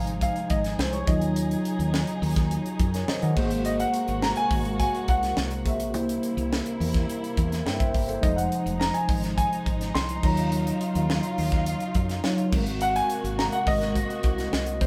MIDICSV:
0, 0, Header, 1, 7, 480
1, 0, Start_track
1, 0, Tempo, 572519
1, 1138, Time_signature, 4, 2, 24, 8
1, 12464, End_track
2, 0, Start_track
2, 0, Title_t, "Grand piano"
2, 0, Program_c, 0, 0
2, 0, Note_on_c, 0, 77, 100
2, 176, Note_off_c, 0, 77, 0
2, 189, Note_on_c, 0, 77, 106
2, 424, Note_on_c, 0, 75, 83
2, 430, Note_off_c, 0, 77, 0
2, 666, Note_on_c, 0, 72, 82
2, 668, Note_off_c, 0, 75, 0
2, 778, Note_on_c, 0, 73, 78
2, 785, Note_off_c, 0, 72, 0
2, 901, Note_off_c, 0, 73, 0
2, 902, Note_on_c, 0, 75, 80
2, 1827, Note_off_c, 0, 75, 0
2, 3065, Note_on_c, 0, 75, 99
2, 3185, Note_off_c, 0, 75, 0
2, 3186, Note_on_c, 0, 78, 98
2, 3544, Note_on_c, 0, 82, 111
2, 3553, Note_off_c, 0, 78, 0
2, 3586, Note_off_c, 0, 82, 0
2, 3663, Note_on_c, 0, 80, 116
2, 4008, Note_off_c, 0, 80, 0
2, 4020, Note_on_c, 0, 80, 103
2, 4267, Note_off_c, 0, 80, 0
2, 4267, Note_on_c, 0, 78, 93
2, 4757, Note_off_c, 0, 78, 0
2, 4758, Note_on_c, 0, 76, 69
2, 5195, Note_off_c, 0, 76, 0
2, 6898, Note_on_c, 0, 75, 87
2, 7011, Note_on_c, 0, 78, 79
2, 7022, Note_off_c, 0, 75, 0
2, 7375, Note_on_c, 0, 82, 99
2, 7386, Note_off_c, 0, 78, 0
2, 7495, Note_on_c, 0, 80, 85
2, 7501, Note_off_c, 0, 82, 0
2, 7847, Note_off_c, 0, 80, 0
2, 7860, Note_on_c, 0, 80, 106
2, 8338, Note_on_c, 0, 84, 105
2, 8355, Note_off_c, 0, 80, 0
2, 8586, Note_off_c, 0, 84, 0
2, 8586, Note_on_c, 0, 82, 94
2, 9510, Note_off_c, 0, 82, 0
2, 10746, Note_on_c, 0, 78, 114
2, 10865, Note_on_c, 0, 80, 115
2, 10867, Note_off_c, 0, 78, 0
2, 11223, Note_on_c, 0, 82, 108
2, 11234, Note_off_c, 0, 80, 0
2, 11265, Note_off_c, 0, 82, 0
2, 11341, Note_on_c, 0, 78, 100
2, 11465, Note_off_c, 0, 78, 0
2, 11465, Note_on_c, 0, 75, 120
2, 12418, Note_on_c, 0, 72, 84
2, 12452, Note_off_c, 0, 75, 0
2, 12464, Note_off_c, 0, 72, 0
2, 12464, End_track
3, 0, Start_track
3, 0, Title_t, "Tine electric piano"
3, 0, Program_c, 1, 4
3, 0, Control_c, 1, 64, 127
3, 0, Note_on_c, 1, 53, 55
3, 0, Note_on_c, 1, 56, 57
3, 0, Note_on_c, 1, 63, 50
3, 0, Note_on_c, 1, 72, 65
3, 860, Note_off_c, 1, 56, 0
3, 864, Note_off_c, 1, 63, 0
3, 869, Note_off_c, 1, 53, 0
3, 872, Note_off_c, 1, 72, 0
3, 895, Note_on_c, 1, 54, 63
3, 901, Note_on_c, 1, 63, 59
3, 908, Note_on_c, 1, 65, 62
3, 909, Control_c, 1, 64, 0
3, 911, Note_on_c, 1, 73, 69
3, 1029, Control_c, 1, 64, 127
3, 2316, Note_off_c, 1, 73, 0
3, 2470, Note_on_c, 1, 73, 60
3, 2473, Note_on_c, 1, 70, 56
3, 2578, Note_off_c, 1, 73, 0
3, 2580, Note_off_c, 1, 70, 0
3, 2583, Note_on_c, 1, 75, 78
3, 2588, Note_on_c, 1, 72, 61
3, 2695, Note_off_c, 1, 75, 0
3, 2697, Note_off_c, 1, 72, 0
3, 2704, Note_on_c, 1, 78, 64
3, 2710, Note_on_c, 1, 75, 60
3, 2784, Note_off_c, 1, 54, 0
3, 2787, Note_off_c, 1, 63, 0
3, 2790, Note_off_c, 1, 65, 0
3, 2815, Note_on_c, 1, 58, 80
3, 2821, Note_on_c, 1, 66, 64
3, 2830, Control_c, 1, 64, 0
3, 2830, Note_on_c, 1, 68, 72
3, 2834, Note_on_c, 1, 72, 85
3, 2929, Note_off_c, 1, 78, 0
3, 2932, Note_off_c, 1, 75, 0
3, 2993, Control_c, 1, 64, 127
3, 4704, Note_off_c, 1, 58, 0
3, 4707, Note_off_c, 1, 66, 0
3, 4711, Note_off_c, 1, 68, 0
3, 4713, Note_off_c, 1, 72, 0
3, 4737, Note_on_c, 1, 58, 41
3, 4741, Note_on_c, 1, 66, 42
3, 4742, Note_on_c, 1, 68, 45
3, 4744, Note_on_c, 1, 72, 48
3, 4962, Note_off_c, 1, 58, 0
3, 4972, Note_on_c, 1, 58, 63
3, 4980, Note_off_c, 1, 66, 0
3, 4980, Note_on_c, 1, 64, 58
3, 4981, Note_off_c, 1, 68, 0
3, 4982, Note_off_c, 1, 72, 0
3, 4988, Note_on_c, 1, 67, 59
3, 4991, Control_c, 1, 64, 0
3, 4991, Note_on_c, 1, 72, 72
3, 5122, Control_c, 1, 64, 127
3, 6397, Note_off_c, 1, 72, 0
3, 6419, Note_on_c, 1, 76, 57
3, 6420, Note_on_c, 1, 79, 68
3, 6528, Note_off_c, 1, 76, 0
3, 6534, Note_off_c, 1, 79, 0
3, 6538, Note_on_c, 1, 76, 80
3, 6541, Note_on_c, 1, 72, 66
3, 6763, Note_off_c, 1, 72, 0
3, 6767, Note_off_c, 1, 76, 0
3, 6773, Note_on_c, 1, 72, 69
3, 6778, Note_on_c, 1, 69, 57
3, 6863, Note_off_c, 1, 58, 0
3, 6867, Note_off_c, 1, 64, 0
3, 6871, Note_off_c, 1, 67, 0
3, 6886, Note_on_c, 1, 56, 61
3, 6892, Note_on_c, 1, 63, 57
3, 6898, Note_off_c, 1, 72, 0
3, 6899, Note_on_c, 1, 53, 56
3, 6909, Control_c, 1, 64, 0
3, 6909, Note_on_c, 1, 72, 66
3, 7007, Note_off_c, 1, 69, 0
3, 7058, Control_c, 1, 64, 127
3, 8540, Note_off_c, 1, 56, 0
3, 8543, Note_off_c, 1, 63, 0
3, 8546, Note_off_c, 1, 53, 0
3, 8551, Note_off_c, 1, 72, 0
3, 8571, Note_on_c, 1, 54, 61
3, 8576, Note_on_c, 1, 63, 54
3, 8585, Note_on_c, 1, 65, 55
3, 8591, Control_c, 1, 64, 0
3, 8593, Note_on_c, 1, 73, 75
3, 8734, Control_c, 1, 64, 127
3, 10223, Note_off_c, 1, 54, 0
3, 10225, Note_off_c, 1, 63, 0
3, 10230, Note_off_c, 1, 65, 0
3, 10234, Note_off_c, 1, 73, 0
3, 10265, Note_on_c, 1, 54, 63
3, 10268, Note_on_c, 1, 63, 60
3, 10269, Note_on_c, 1, 65, 57
3, 10276, Note_on_c, 1, 73, 66
3, 10501, Note_on_c, 1, 56, 69
3, 10503, Note_off_c, 1, 54, 0
3, 10503, Note_on_c, 1, 60, 65
3, 10505, Note_off_c, 1, 63, 0
3, 10505, Note_off_c, 1, 65, 0
3, 10507, Note_on_c, 1, 66, 61
3, 10509, Note_off_c, 1, 73, 0
3, 10511, Control_c, 1, 64, 0
3, 10514, Note_on_c, 1, 70, 75
3, 10664, Control_c, 1, 64, 127
3, 12388, Note_off_c, 1, 56, 0
3, 12389, Note_off_c, 1, 60, 0
3, 12391, Note_off_c, 1, 66, 0
3, 12395, Note_off_c, 1, 70, 0
3, 12414, Note_on_c, 1, 56, 47
3, 12418, Note_on_c, 1, 60, 39
3, 12423, Note_on_c, 1, 66, 45
3, 12429, Note_on_c, 1, 70, 45
3, 12464, Note_off_c, 1, 56, 0
3, 12464, Note_off_c, 1, 60, 0
3, 12464, Note_off_c, 1, 66, 0
3, 12464, Note_off_c, 1, 70, 0
3, 12464, End_track
4, 0, Start_track
4, 0, Title_t, "String section"
4, 0, Program_c, 2, 48
4, 0, Note_on_c, 2, 48, 77
4, 0, Note_on_c, 2, 56, 67
4, 0, Note_on_c, 2, 63, 64
4, 0, Note_on_c, 2, 68, 89
4, 879, Note_off_c, 2, 56, 0
4, 882, Note_off_c, 2, 48, 0
4, 883, Note_off_c, 2, 63, 0
4, 903, Note_on_c, 2, 63, 76
4, 904, Note_on_c, 2, 49, 80
4, 906, Note_on_c, 2, 54, 77
4, 2786, Note_off_c, 2, 68, 0
4, 2802, Note_off_c, 2, 49, 0
4, 2802, Note_off_c, 2, 63, 0
4, 2803, Note_off_c, 2, 54, 0
4, 2825, Note_on_c, 2, 66, 90
4, 2826, Note_on_c, 2, 48, 83
4, 2826, Note_on_c, 2, 58, 77
4, 2828, Note_on_c, 2, 56, 75
4, 4961, Note_off_c, 2, 58, 0
4, 4961, Note_off_c, 2, 66, 0
4, 4962, Note_off_c, 2, 56, 0
4, 4978, Note_on_c, 2, 58, 70
4, 4981, Note_on_c, 2, 55, 76
4, 4983, Note_on_c, 2, 64, 89
4, 6880, Note_off_c, 2, 58, 0
4, 6881, Note_off_c, 2, 55, 0
4, 6883, Note_off_c, 2, 64, 0
4, 6894, Note_on_c, 2, 63, 94
4, 6895, Note_on_c, 2, 56, 75
4, 6899, Note_on_c, 2, 53, 68
4, 8551, Note_off_c, 2, 48, 0
4, 8561, Note_off_c, 2, 56, 0
4, 8563, Note_off_c, 2, 53, 0
4, 8579, Note_on_c, 2, 49, 76
4, 8579, Note_on_c, 2, 65, 98
4, 8583, Note_on_c, 2, 54, 83
4, 10465, Note_off_c, 2, 63, 0
4, 10481, Note_off_c, 2, 49, 0
4, 10481, Note_off_c, 2, 65, 0
4, 10483, Note_off_c, 2, 54, 0
4, 10503, Note_on_c, 2, 58, 80
4, 10504, Note_on_c, 2, 48, 83
4, 10507, Note_on_c, 2, 66, 91
4, 10511, Note_on_c, 2, 56, 83
4, 12464, Note_off_c, 2, 48, 0
4, 12464, Note_off_c, 2, 56, 0
4, 12464, Note_off_c, 2, 58, 0
4, 12464, Note_off_c, 2, 66, 0
4, 12464, End_track
5, 0, Start_track
5, 0, Title_t, "Fretless electric bass"
5, 0, Program_c, 3, 35
5, 0, Note_on_c, 3, 32, 81
5, 235, Note_off_c, 3, 32, 0
5, 423, Note_on_c, 3, 32, 87
5, 619, Note_off_c, 3, 32, 0
5, 661, Note_on_c, 3, 36, 94
5, 858, Note_off_c, 3, 36, 0
5, 900, Note_on_c, 3, 39, 82
5, 1296, Note_off_c, 3, 39, 0
5, 1501, Note_on_c, 3, 39, 81
5, 1698, Note_off_c, 3, 39, 0
5, 1861, Note_on_c, 3, 39, 93
5, 2157, Note_off_c, 3, 39, 0
5, 2344, Note_on_c, 3, 42, 94
5, 2540, Note_off_c, 3, 42, 0
5, 2705, Note_on_c, 3, 51, 73
5, 2801, Note_off_c, 3, 51, 0
5, 2823, Note_on_c, 3, 32, 94
5, 3218, Note_off_c, 3, 32, 0
5, 3424, Note_on_c, 3, 32, 88
5, 3620, Note_off_c, 3, 32, 0
5, 3779, Note_on_c, 3, 32, 103
5, 4076, Note_off_c, 3, 32, 0
5, 4262, Note_on_c, 3, 36, 97
5, 4459, Note_off_c, 3, 36, 0
5, 4503, Note_on_c, 3, 36, 91
5, 4742, Note_off_c, 3, 36, 0
5, 4742, Note_on_c, 3, 34, 85
5, 4979, Note_off_c, 3, 34, 0
5, 4979, Note_on_c, 3, 36, 113
5, 5177, Note_off_c, 3, 36, 0
5, 5341, Note_on_c, 3, 36, 88
5, 5539, Note_off_c, 3, 36, 0
5, 5704, Note_on_c, 3, 40, 89
5, 5900, Note_off_c, 3, 40, 0
5, 6183, Note_on_c, 3, 40, 90
5, 6380, Note_off_c, 3, 40, 0
5, 6419, Note_on_c, 3, 43, 84
5, 6618, Note_off_c, 3, 43, 0
5, 6662, Note_on_c, 3, 31, 71
5, 6859, Note_off_c, 3, 31, 0
5, 6900, Note_on_c, 3, 29, 102
5, 7098, Note_off_c, 3, 29, 0
5, 7260, Note_on_c, 3, 29, 83
5, 7458, Note_off_c, 3, 29, 0
5, 7618, Note_on_c, 3, 32, 89
5, 7917, Note_off_c, 3, 32, 0
5, 8103, Note_on_c, 3, 32, 85
5, 8300, Note_off_c, 3, 32, 0
5, 8344, Note_on_c, 3, 36, 97
5, 8541, Note_off_c, 3, 36, 0
5, 8580, Note_on_c, 3, 39, 92
5, 8977, Note_off_c, 3, 39, 0
5, 9183, Note_on_c, 3, 39, 87
5, 9381, Note_off_c, 3, 39, 0
5, 9542, Note_on_c, 3, 39, 77
5, 9839, Note_off_c, 3, 39, 0
5, 10019, Note_on_c, 3, 42, 83
5, 10218, Note_off_c, 3, 42, 0
5, 10501, Note_on_c, 3, 32, 105
5, 10898, Note_off_c, 3, 32, 0
5, 11102, Note_on_c, 3, 32, 84
5, 11300, Note_off_c, 3, 32, 0
5, 11460, Note_on_c, 3, 32, 101
5, 11758, Note_off_c, 3, 32, 0
5, 11938, Note_on_c, 3, 36, 91
5, 12138, Note_off_c, 3, 36, 0
5, 12181, Note_on_c, 3, 36, 89
5, 12416, Note_off_c, 3, 36, 0
5, 12416, Note_on_c, 3, 34, 91
5, 12464, Note_off_c, 3, 34, 0
5, 12464, End_track
6, 0, Start_track
6, 0, Title_t, "Muted fretless electric bass strokes"
6, 2584, Note_on_c, 9, 29, 46
6, 2668, Note_off_c, 9, 29, 0
6, 12464, End_track
7, 0, Start_track
7, 0, Title_t, "Drums"
7, 61, Note_on_c, 9, 42, 58
7, 144, Note_off_c, 9, 42, 0
7, 179, Note_on_c, 9, 36, 84
7, 181, Note_on_c, 9, 42, 88
7, 263, Note_off_c, 9, 36, 0
7, 265, Note_off_c, 9, 42, 0
7, 300, Note_on_c, 9, 42, 43
7, 384, Note_off_c, 9, 42, 0
7, 418, Note_on_c, 9, 42, 70
7, 421, Note_on_c, 9, 36, 93
7, 502, Note_off_c, 9, 42, 0
7, 505, Note_off_c, 9, 36, 0
7, 540, Note_on_c, 9, 42, 57
7, 545, Note_on_c, 9, 38, 33
7, 624, Note_off_c, 9, 42, 0
7, 629, Note_off_c, 9, 38, 0
7, 665, Note_on_c, 9, 38, 115
7, 748, Note_off_c, 9, 38, 0
7, 777, Note_on_c, 9, 42, 45
7, 861, Note_off_c, 9, 42, 0
7, 900, Note_on_c, 9, 42, 78
7, 901, Note_on_c, 9, 36, 117
7, 984, Note_off_c, 9, 42, 0
7, 985, Note_off_c, 9, 36, 0
7, 1019, Note_on_c, 9, 42, 67
7, 1102, Note_off_c, 9, 42, 0
7, 1142, Note_on_c, 9, 42, 87
7, 1226, Note_off_c, 9, 42, 0
7, 1267, Note_on_c, 9, 42, 55
7, 1351, Note_off_c, 9, 42, 0
7, 1386, Note_on_c, 9, 42, 76
7, 1470, Note_off_c, 9, 42, 0
7, 1507, Note_on_c, 9, 42, 49
7, 1591, Note_off_c, 9, 42, 0
7, 1625, Note_on_c, 9, 38, 116
7, 1709, Note_off_c, 9, 38, 0
7, 1738, Note_on_c, 9, 42, 49
7, 1822, Note_off_c, 9, 42, 0
7, 1868, Note_on_c, 9, 46, 75
7, 1952, Note_off_c, 9, 46, 0
7, 1982, Note_on_c, 9, 36, 101
7, 1984, Note_on_c, 9, 42, 62
7, 1986, Note_on_c, 9, 38, 35
7, 2066, Note_off_c, 9, 36, 0
7, 2068, Note_off_c, 9, 42, 0
7, 2070, Note_off_c, 9, 38, 0
7, 2105, Note_on_c, 9, 42, 79
7, 2189, Note_off_c, 9, 42, 0
7, 2228, Note_on_c, 9, 42, 43
7, 2312, Note_off_c, 9, 42, 0
7, 2343, Note_on_c, 9, 42, 81
7, 2344, Note_on_c, 9, 36, 100
7, 2427, Note_off_c, 9, 36, 0
7, 2427, Note_off_c, 9, 42, 0
7, 2465, Note_on_c, 9, 42, 57
7, 2470, Note_on_c, 9, 38, 34
7, 2549, Note_off_c, 9, 42, 0
7, 2554, Note_off_c, 9, 38, 0
7, 2584, Note_on_c, 9, 38, 126
7, 2668, Note_off_c, 9, 38, 0
7, 2701, Note_on_c, 9, 42, 46
7, 2785, Note_off_c, 9, 42, 0
7, 2821, Note_on_c, 9, 49, 71
7, 2823, Note_on_c, 9, 36, 99
7, 2905, Note_off_c, 9, 49, 0
7, 2906, Note_off_c, 9, 36, 0
7, 2939, Note_on_c, 9, 42, 63
7, 3023, Note_off_c, 9, 42, 0
7, 3059, Note_on_c, 9, 42, 85
7, 3143, Note_off_c, 9, 42, 0
7, 3183, Note_on_c, 9, 42, 54
7, 3267, Note_off_c, 9, 42, 0
7, 3300, Note_on_c, 9, 42, 71
7, 3384, Note_off_c, 9, 42, 0
7, 3419, Note_on_c, 9, 42, 50
7, 3502, Note_off_c, 9, 42, 0
7, 3542, Note_on_c, 9, 38, 107
7, 3626, Note_off_c, 9, 38, 0
7, 3652, Note_on_c, 9, 42, 48
7, 3736, Note_off_c, 9, 42, 0
7, 3779, Note_on_c, 9, 36, 104
7, 3780, Note_on_c, 9, 46, 68
7, 3863, Note_off_c, 9, 36, 0
7, 3863, Note_off_c, 9, 46, 0
7, 3900, Note_on_c, 9, 42, 57
7, 3983, Note_off_c, 9, 42, 0
7, 4021, Note_on_c, 9, 36, 78
7, 4021, Note_on_c, 9, 42, 81
7, 4105, Note_off_c, 9, 36, 0
7, 4105, Note_off_c, 9, 42, 0
7, 4146, Note_on_c, 9, 42, 43
7, 4230, Note_off_c, 9, 42, 0
7, 4259, Note_on_c, 9, 42, 72
7, 4263, Note_on_c, 9, 36, 96
7, 4343, Note_off_c, 9, 42, 0
7, 4346, Note_off_c, 9, 36, 0
7, 4384, Note_on_c, 9, 42, 59
7, 4389, Note_on_c, 9, 38, 33
7, 4467, Note_off_c, 9, 42, 0
7, 4473, Note_off_c, 9, 38, 0
7, 4501, Note_on_c, 9, 38, 107
7, 4585, Note_off_c, 9, 38, 0
7, 4617, Note_on_c, 9, 42, 50
7, 4701, Note_off_c, 9, 42, 0
7, 4742, Note_on_c, 9, 36, 89
7, 4744, Note_on_c, 9, 42, 86
7, 4825, Note_off_c, 9, 36, 0
7, 4827, Note_off_c, 9, 42, 0
7, 4861, Note_on_c, 9, 42, 67
7, 4945, Note_off_c, 9, 42, 0
7, 4980, Note_on_c, 9, 42, 77
7, 5064, Note_off_c, 9, 42, 0
7, 5108, Note_on_c, 9, 42, 64
7, 5191, Note_off_c, 9, 42, 0
7, 5224, Note_on_c, 9, 42, 69
7, 5308, Note_off_c, 9, 42, 0
7, 5348, Note_on_c, 9, 42, 53
7, 5432, Note_off_c, 9, 42, 0
7, 5471, Note_on_c, 9, 38, 111
7, 5555, Note_off_c, 9, 38, 0
7, 5582, Note_on_c, 9, 42, 46
7, 5666, Note_off_c, 9, 42, 0
7, 5711, Note_on_c, 9, 46, 74
7, 5795, Note_off_c, 9, 46, 0
7, 5822, Note_on_c, 9, 36, 94
7, 5826, Note_on_c, 9, 42, 59
7, 5828, Note_on_c, 9, 38, 37
7, 5906, Note_off_c, 9, 36, 0
7, 5910, Note_off_c, 9, 42, 0
7, 5912, Note_off_c, 9, 38, 0
7, 5948, Note_on_c, 9, 42, 86
7, 6032, Note_off_c, 9, 42, 0
7, 6070, Note_on_c, 9, 42, 43
7, 6153, Note_off_c, 9, 42, 0
7, 6182, Note_on_c, 9, 42, 74
7, 6183, Note_on_c, 9, 36, 83
7, 6266, Note_off_c, 9, 42, 0
7, 6267, Note_off_c, 9, 36, 0
7, 6307, Note_on_c, 9, 42, 55
7, 6312, Note_on_c, 9, 38, 30
7, 6391, Note_off_c, 9, 42, 0
7, 6396, Note_off_c, 9, 38, 0
7, 6427, Note_on_c, 9, 38, 105
7, 6510, Note_off_c, 9, 38, 0
7, 6540, Note_on_c, 9, 42, 47
7, 6541, Note_on_c, 9, 36, 98
7, 6624, Note_off_c, 9, 42, 0
7, 6625, Note_off_c, 9, 36, 0
7, 6661, Note_on_c, 9, 36, 95
7, 6663, Note_on_c, 9, 46, 83
7, 6745, Note_off_c, 9, 36, 0
7, 6746, Note_off_c, 9, 46, 0
7, 6781, Note_on_c, 9, 42, 71
7, 6865, Note_off_c, 9, 42, 0
7, 6901, Note_on_c, 9, 36, 118
7, 6902, Note_on_c, 9, 42, 82
7, 6985, Note_off_c, 9, 36, 0
7, 6985, Note_off_c, 9, 42, 0
7, 7028, Note_on_c, 9, 42, 63
7, 7112, Note_off_c, 9, 42, 0
7, 7143, Note_on_c, 9, 42, 69
7, 7227, Note_off_c, 9, 42, 0
7, 7265, Note_on_c, 9, 42, 45
7, 7349, Note_off_c, 9, 42, 0
7, 7386, Note_on_c, 9, 38, 105
7, 7469, Note_off_c, 9, 38, 0
7, 7499, Note_on_c, 9, 42, 53
7, 7583, Note_off_c, 9, 42, 0
7, 7619, Note_on_c, 9, 36, 112
7, 7623, Note_on_c, 9, 46, 74
7, 7703, Note_off_c, 9, 36, 0
7, 7706, Note_off_c, 9, 46, 0
7, 7744, Note_on_c, 9, 42, 58
7, 7746, Note_on_c, 9, 38, 35
7, 7828, Note_off_c, 9, 42, 0
7, 7830, Note_off_c, 9, 38, 0
7, 7861, Note_on_c, 9, 36, 80
7, 7865, Note_on_c, 9, 42, 99
7, 7945, Note_off_c, 9, 36, 0
7, 7949, Note_off_c, 9, 42, 0
7, 7987, Note_on_c, 9, 42, 46
7, 8071, Note_off_c, 9, 42, 0
7, 8102, Note_on_c, 9, 36, 84
7, 8102, Note_on_c, 9, 42, 74
7, 8186, Note_off_c, 9, 36, 0
7, 8186, Note_off_c, 9, 42, 0
7, 8224, Note_on_c, 9, 42, 54
7, 8229, Note_on_c, 9, 38, 34
7, 8308, Note_off_c, 9, 42, 0
7, 8313, Note_off_c, 9, 38, 0
7, 8345, Note_on_c, 9, 38, 106
7, 8429, Note_off_c, 9, 38, 0
7, 8458, Note_on_c, 9, 42, 50
7, 8542, Note_off_c, 9, 42, 0
7, 8580, Note_on_c, 9, 36, 117
7, 8580, Note_on_c, 9, 49, 78
7, 8664, Note_off_c, 9, 36, 0
7, 8664, Note_off_c, 9, 49, 0
7, 8695, Note_on_c, 9, 42, 65
7, 8779, Note_off_c, 9, 42, 0
7, 8820, Note_on_c, 9, 42, 93
7, 8904, Note_off_c, 9, 42, 0
7, 8945, Note_on_c, 9, 42, 62
7, 9029, Note_off_c, 9, 42, 0
7, 9061, Note_on_c, 9, 42, 73
7, 9145, Note_off_c, 9, 42, 0
7, 9183, Note_on_c, 9, 42, 54
7, 9267, Note_off_c, 9, 42, 0
7, 9305, Note_on_c, 9, 38, 103
7, 9389, Note_off_c, 9, 38, 0
7, 9415, Note_on_c, 9, 42, 50
7, 9499, Note_off_c, 9, 42, 0
7, 9541, Note_on_c, 9, 46, 77
7, 9625, Note_off_c, 9, 46, 0
7, 9658, Note_on_c, 9, 42, 61
7, 9659, Note_on_c, 9, 36, 93
7, 9660, Note_on_c, 9, 38, 38
7, 9742, Note_off_c, 9, 36, 0
7, 9742, Note_off_c, 9, 42, 0
7, 9744, Note_off_c, 9, 38, 0
7, 9779, Note_on_c, 9, 42, 86
7, 9862, Note_off_c, 9, 42, 0
7, 9896, Note_on_c, 9, 42, 43
7, 9980, Note_off_c, 9, 42, 0
7, 10015, Note_on_c, 9, 42, 67
7, 10020, Note_on_c, 9, 36, 86
7, 10099, Note_off_c, 9, 42, 0
7, 10104, Note_off_c, 9, 36, 0
7, 10139, Note_on_c, 9, 42, 59
7, 10144, Note_on_c, 9, 38, 35
7, 10223, Note_off_c, 9, 42, 0
7, 10228, Note_off_c, 9, 38, 0
7, 10261, Note_on_c, 9, 38, 115
7, 10344, Note_off_c, 9, 38, 0
7, 10378, Note_on_c, 9, 42, 51
7, 10462, Note_off_c, 9, 42, 0
7, 10501, Note_on_c, 9, 36, 123
7, 10503, Note_on_c, 9, 49, 81
7, 10585, Note_off_c, 9, 36, 0
7, 10587, Note_off_c, 9, 49, 0
7, 10617, Note_on_c, 9, 42, 68
7, 10701, Note_off_c, 9, 42, 0
7, 10738, Note_on_c, 9, 42, 92
7, 10822, Note_off_c, 9, 42, 0
7, 10864, Note_on_c, 9, 42, 62
7, 10948, Note_off_c, 9, 42, 0
7, 10980, Note_on_c, 9, 42, 67
7, 11064, Note_off_c, 9, 42, 0
7, 11106, Note_on_c, 9, 42, 52
7, 11190, Note_off_c, 9, 42, 0
7, 11225, Note_on_c, 9, 38, 110
7, 11309, Note_off_c, 9, 38, 0
7, 11337, Note_on_c, 9, 42, 47
7, 11421, Note_off_c, 9, 42, 0
7, 11459, Note_on_c, 9, 36, 102
7, 11463, Note_on_c, 9, 46, 81
7, 11543, Note_off_c, 9, 36, 0
7, 11546, Note_off_c, 9, 46, 0
7, 11583, Note_on_c, 9, 42, 54
7, 11586, Note_on_c, 9, 38, 36
7, 11667, Note_off_c, 9, 42, 0
7, 11669, Note_off_c, 9, 38, 0
7, 11700, Note_on_c, 9, 36, 72
7, 11703, Note_on_c, 9, 42, 85
7, 11784, Note_off_c, 9, 36, 0
7, 11787, Note_off_c, 9, 42, 0
7, 11823, Note_on_c, 9, 42, 42
7, 11906, Note_off_c, 9, 42, 0
7, 11932, Note_on_c, 9, 42, 79
7, 11939, Note_on_c, 9, 36, 92
7, 12016, Note_off_c, 9, 42, 0
7, 12022, Note_off_c, 9, 36, 0
7, 12059, Note_on_c, 9, 42, 49
7, 12064, Note_on_c, 9, 38, 32
7, 12143, Note_off_c, 9, 42, 0
7, 12148, Note_off_c, 9, 38, 0
7, 12182, Note_on_c, 9, 38, 109
7, 12266, Note_off_c, 9, 38, 0
7, 12295, Note_on_c, 9, 42, 50
7, 12378, Note_off_c, 9, 42, 0
7, 12417, Note_on_c, 9, 42, 76
7, 12418, Note_on_c, 9, 36, 95
7, 12464, Note_off_c, 9, 36, 0
7, 12464, Note_off_c, 9, 42, 0
7, 12464, End_track
0, 0, End_of_file